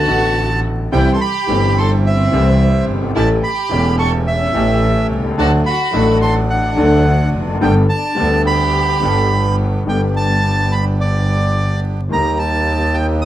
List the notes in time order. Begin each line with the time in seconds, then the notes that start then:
Already playing: F#4 A5
0.06 A1 A2 D3 A3 B3 F#4
0.92 C2 C3 E3 G3 C4 E4 G4 G5
1.13 A4 C6
1.21 G4 B5
1.47 G1 G2 E3 G3 C4 E4 G4
1.77 A4 C6
2.05 C4 E5
2.31 C2 C3 E3 G3 C4 E4 G4
2.35 G4
2.88 G1
2.95 F#1
3.03 G1
3.09 G#1
3.15 A1 A2 E3 A3 C#4 E4 G4 A5
3.43 G4 B5
3.69 E1 E2 E3 A3 C#4 G4
3.73 G4
3.97 A4 C#6
4.26 C#4 E5
4.53 A1 A2 E3 A3 C#4 G4
5.10 C2
5.18 B1
5.24 C2
5.31 C#2
5.37 D2 D3 F#3 A3 D4 F#4 A4 A5
5.66 F#4 B5
5.91 A1 A2 F#3 A3 D4 F#4
5.95 A4
6.22 A4 C6
6.50 D4 F#5
6.75 D2 D3 F#3 A3 D4 F#4 A4
7.34 F1
7.40 E2
7.48 F2
7.54 F#2
7.61 G1 G2 G3 A3 B3 D4 G4 A4 G5
7.89 D4 A5
8.15 D2 D3 G3 A3 B3 D4 G4 A4
8.46 G4 B5
9.00 G1 G2 G3 A3 B3 D4 G4 A4
9.85 G1 G2 D3 G3 B3 D4 G4 G5
10.17 A5
10.72 B5
11.01 D5
12.09 D#2 D#3 G3 A#3 D#4 G4 A#5
12.39 A5
12.94 G5
13.22 D#6